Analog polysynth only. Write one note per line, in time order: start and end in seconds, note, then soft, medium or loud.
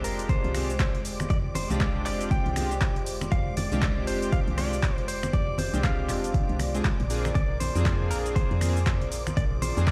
0.00 0.52 G#3 medium
0.00 0.52 C4 medium
0.00 0.52 D4 medium
0.00 0.52 F4 medium
0.00 0.52 G4 medium
0.54 0.71 G#3 medium
0.54 0.71 C4 medium
0.54 0.71 D4 medium
0.54 0.71 F4 medium
0.54 0.71 G4 medium
1.69 2.53 G#3 medium
1.69 2.53 C4 medium
1.69 2.54 D4 medium
1.69 2.54 F4 medium
1.69 2.54 G4 medium
2.56 2.73 G#3 medium
2.56 2.73 C4 medium
2.56 2.73 D4 medium
2.56 2.73 F4 medium
2.56 2.73 G4 medium
3.71 4.55 G#3 medium
3.71 4.55 C4 medium
3.71 4.55 D4 medium
3.71 4.56 F4 medium
3.71 4.56 G4 medium
4.57 4.74 G#3 medium
4.57 4.74 C4 medium
4.57 4.75 D4 medium
4.57 4.75 F4 medium
4.57 4.75 G4 medium
5.73 6.57 G#3 medium
5.73 6.57 C4 medium
5.73 6.57 D4 medium
5.73 6.57 F4 medium
5.73 6.57 G4 medium
6.74 6.87 G#3 medium
6.74 6.87 C4 medium
6.74 6.87 D4 medium
6.74 6.87 F4 medium
6.74 6.87 G#4 medium
7.10 7.26 A#3 medium
7.10 7.27 C4 medium
7.10 7.27 D4 medium
7.10 7.27 F4 medium
7.10 7.27 G#4 medium
7.75 8.58 A#3 medium
7.75 8.59 C4 medium
7.75 8.59 D4 medium
7.75 8.59 F4 medium
7.75 8.59 G#4 medium
8.61 8.78 A#3 medium
8.61 8.78 C4 medium
8.61 8.78 D4 medium
8.61 8.78 F4 medium
8.61 8.78 G#4 medium
9.76 9.91 A#3 medium
9.76 9.91 C4 medium
9.76 9.91 D4 medium
9.76 9.91 F4 medium
9.76 9.91 G#4 medium